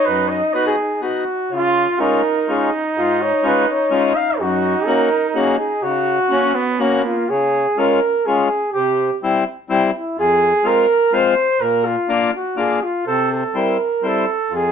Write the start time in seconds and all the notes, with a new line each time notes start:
Already playing: D#4
0.05 F#2 B4
0.29 D#5
0.54 B3 D#4 F#4 B4
0.66 G#4
1.02 B3 D#4 F#4
1.51 C#3 F4
1.99 G#3 C#4 D#4 F4 A#4
2.48 G#3 C#4 F4 G#4
2.96 G#2 F4
3.22 C#5
3.43 G#3 C#4 F4 B4
3.70 C#5
3.91 G#3 C#4 F4 D#5
4.16 F5
4.39 F#2 D#4 F#4
4.87 A#3 C#4 F#4 A#4
5.29 A#4
5.35 A#3 C#4 F#4 G#4
5.59 G#4
5.83 C#3 F#4
6.30 A#3 C#4 F#4
6.55 B3
6.79 A#3 C#4 F#4
7.05 F4
7.29 C#3 G#4
7.77 G#3 C#4 F4 A#4
8.26 G#3 C#4 F4 G#4
8.73 C3 G4
9.23 G3 C4 E4
9.70 G3 C4 E4
9.97 E4
10.18 F2 G#4
10.64 G#3 C4 F4 A#4
11.13 G#3 C4 F4 C5
11.60 A#2 A#4
11.85 F4
12.09 A#3 D4 F4
12.36 F#4
12.57 A#3 D4 F4 G#4
12.83 F4
13.07 C3 A4
13.32 A4
13.55 G3 C4 E4 A#4
14.03 G3 C4 E4 A4
14.50 F2
14.55 G#4